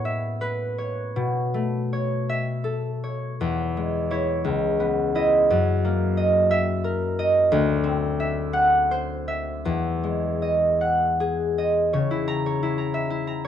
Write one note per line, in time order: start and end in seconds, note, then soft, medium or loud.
0.00 1.19 A2 medium
0.00 3.27 B3 soft
0.00 0.61 E4 soft
0.00 0.77 C#5 soft
0.05 2.28 E5 medium
0.41 4.31 B4 soft
0.78 1.92 C#5 soft
1.16 3.43 B2 soft
1.54 3.43 A3 soft
1.93 3.02 C#5 soft
2.29 6.19 E5 medium
2.64 3.42 A4 soft
3.04 4.10 C#5 soft
3.41 4.48 E2 soft
3.77 7.52 G#3 soft
4.11 5.14 E4 soft
4.11 7.51 C#5 soft
4.44 5.52 C#2 soft
4.80 5.52 B3 soft
5.15 9.05 E4 soft
5.15 6.16 D#5 medium
5.50 7.52 F#2 soft
5.85 7.52 A#3 soft
6.17 7.18 D#5 soft
6.51 8.19 E5 medium
6.84 7.52 A#4 soft
7.19 7.53 D#5 medium
7.52 9.70 D2 medium
7.84 9.69 C4 soft
8.20 9.27 E5 medium
8.53 10.80 F#5 medium
8.91 9.69 C5 soft
9.28 12.93 E5 soft
9.65 11.97 E2 soft
10.04 13.47 G#3 soft
10.42 11.57 D#5 soft
10.81 11.97 F#5 soft
11.20 13.47 G#4 soft
11.58 11.97 D#5 soft
11.93 13.47 C#3 soft
11.93 12.45 C#5 soft
12.11 12.62 E4 soft
12.28 12.77 A#5 medium
12.46 13.43 C#5 soft
12.63 13.09 E4 soft
12.78 13.26 A#5 soft
12.94 13.47 E5 soft
13.10 13.47 E4 soft
13.27 13.47 A#5 soft